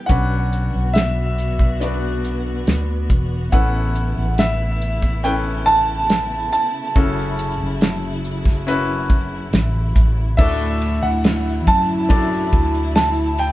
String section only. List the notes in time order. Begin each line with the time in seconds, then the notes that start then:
Already playing: B3
0.09 D3 F#4
3.53 C#3 A3 E4
6.96 F#3
10.38 D3 F#3 A3 E4